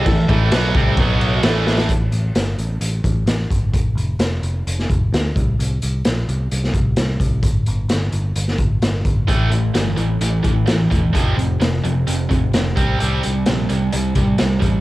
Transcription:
<<
  \new Staff \with { instrumentName = "Tonewheel organ" } { \time 4/4 \key a \minor \tempo 4 = 130 <a e' a'>2 <b fis' cis''>4 <a e' a'>4 | r1 | r1 | r1 |
r1 | r1 | r1 | r1 | }
  \new Staff \with { instrumentName = "Distorted electric guitar" } { \clef bass \time 4/4 \key a \minor <a, e>8 <a, e a>8 <b, fis b>8 <c g c'>8 <b, fis b>4 <a, e a>4 | r1 | r1 | r1 |
r1 | <a, e a>8 <a, e>8 <a, e>8 <a, e>8 <a, e>8 <a, e>8 <a, e>8 <a, e>8 | <f, c f>8 <f, c>8 <f, c>8 <f, c>8 <f, c>8 <f, c>8 <f, c>8 <c g c'>8 | <c g c'>8 <c g>8 <c g>8 <c g>8 <c g>8 <c g>8 <c g>8 <c g>8 | }
  \new Staff \with { instrumentName = "Picked electric bass" } { \clef bass \time 4/4 \key a \minor a,,8 a,,8 b,,8 c,8 b,,4 a,,4 | a,,8 a,,8 g,,8 a,,8 a,,8 a,,8 a,,8 g,,8 | f,,8 f,,8 f,,8 f,,8 f,,8 f,,8 d,8 c,8 | c,8 c,8 bes,,8 c,8 c,8 c,8 c,8 c,8 |
g,,8 g,,8 g,,8 g,,8 g,,8 g,,8 g,,8 g,,8 | a,,8 a,,8 g,,8 a,,8 a,,8 a,,8 a,,8 e,,8 | f,,8 f,,8 f,,8 f,,8 f,,8 f,,8 f,,8 c,8 | c,8 c,8 bes,,8 c,8 c,8 c,8 c,8 a,,8 | }
  \new DrumStaff \with { instrumentName = "Drums" } \drummode { \time 4/4 <cymc bd>8 <cymc bd>8 <cymc sn>8 <cymc bd>8 <cymc bd>8 cymc8 <cymc sn>8 sn16 sn16 | <hh bd>8 hh8 <hh sn>8 hh8 hh8 <hh bd>8 <hh sn>8 <hh bd>8 | <hh bd>8 hh8 <hh sn>8 hh8 hh16 sn16 <hh bd>8 <hh sn>8 <hh bd>8 | hh8 hh8 <hh sn>8 hh8 hh16 sn16 <hh bd>8 <hh sn>8 <hh bd>8 |
<hh bd>8 hh8 <hh sn>8 hh8 hh16 sn16 <hh bd>8 <hh sn>8 <hh bd>8 | <hh bd>8 hh8 <hh sn>8 hh8 hh8 <hh bd>8 <hh sn>8 <hh bd>8 | <hh bd>8 hh8 <hh sn>8 hh8 hh8 <hh bd>8 <hh sn>8 <hh bd>8 | hh8 hh8 <hh sn>8 hh8 hh8 <hh bd>8 <hh sn>8 <hh bd>8 | }
>>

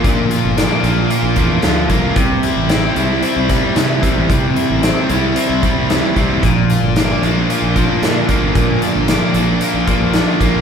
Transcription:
<<
  \new Staff \with { instrumentName = "Steel-string acoustic guitar" } { \time 4/4 \key bes \lydian \tempo 4 = 113 <bes, d f bes d' bes'>8 <f bes d' bes'>8 <bes, d f bes d' bes'>8. <f bes d' bes'>8 <f bes d' bes'>16 <f bes d' bes'>8 <bes, d f bes d' bes'>8 <f bes d' bes'>16 <f bes d' bes'>16 | <c g c' e' c''>8 <g c' e' c''>8 <c g c' e' c''>8. <c' e' c''>8 <c' e' c''>16 <g c' e' c''>8 <c g c' e' c''>8 <g c' e' c''>16 <c' e' c''>16 | <c g c' e' c''>8 <g c' e' c''>8 <c g c' e' c''>8. <c' e' c''>8 <c' e' c''>16 <g c' e' c''>8 <c g c' e' c''>8 <g c' e' c''>16 <c' e' c''>16 | <bes, d f bes d' bes'>8 <f bes d' bes'>8 <bes, d f bes d' bes'>8. <f bes d' bes'>8 <f bes d' bes'>16 <f bes d' bes'>8 <bes, d f bes d' bes'>8 <f bes d' bes'>16 <f bes d' bes'>16 |
<bes, d f bes d' bes'>8 <f bes d' bes'>8 <bes, d f bes d' bes'>8. <f bes d' bes'>8 <f bes d' bes'>16 <f bes d' bes'>8 <bes, d f bes d' bes'>8 <f bes d' bes'>16 <f bes d' bes'>16 | }
  \new Staff \with { instrumentName = "Overdriven electric guitar" } { \time 4/4 \key bes \lydian <bes, d bes f'>8 f'8 d'8 bes8 f'8 bes8 d8 bes8 | c8 e'8 c'8 g8 e'8 g8 e8 g8 | c8 e'8 c'8 g8 e'8 g8 e8 g8 | bes,8 f'8 d'8 bes8 f'8 bes8 d8 bes8 |
bes,8 f'8 d'8 bes8 f'8 bes8 d8 bes8 | }
  \new Staff \with { instrumentName = "Overdriven electric guitar" } { \time 4/4 \key bes \lydian <bes, f bes f'>4 bes8 f'8 bes8 f8 f'8 bes8 | c4 c'8 e'8 c'8 g8 e'8 c'8 | c4 c'8 e'8 c'8 g8 e'8 c'8 | bes,4 bes8 d'8 bes8 f8 d'8 bes8 |
bes,4 bes8 d'8 bes8 f8 d'8 bes8 | }
  \new Staff \with { instrumentName = "Fingered electric bass" } { \clef bass \time 4/4 \key bes \lydian bes,8 r16 g,,8 r16 bes,,8 r16 bes,,16 e,8 d,8 c,8 | c,8. a,,8. c,8 r16 c,8 r16 c8 r16 a,,16 | c8 r16 a,,8 r16 c,8 r16 c,16 r16 c,8 r16 c,8 | bes,,8. g,,8. bes,,8 r16 bes,,8 r16 bes,8 r16 g,,16 |
bes,8 r16 g,,8 r16 bes,,8 r16 bes,,16 r16 bes,,8 r16 bes,,8 | }
  \new DrumStaff \with { instrumentName = "Drums" } \drummode { \time 4/4 <hh bd>8 hh8 <hh sn>8 hh8 hh8 <hh bd>8 <hh sn>8 <hh bd>8 | <hh bd>8 hh8 <hh sn>8 hh8 hh8 <hh bd sn>8 <hh sn>8 <hh bd>8 | <hh bd>8 hh8 <hh sn>8 hh8 hh8 <hh bd>8 <hh sn>8 <hh bd>8 | <hh bd>8 hh8 <hh sn>8 hh8 hh8 <hh bd>8 <hh sn>8 <hh bd>8 |
<hh bd>8 hh8 <hh sn>8 hh8 hh8 <hh bd>8 <hh sn>8 <hh bd>8 | }
>>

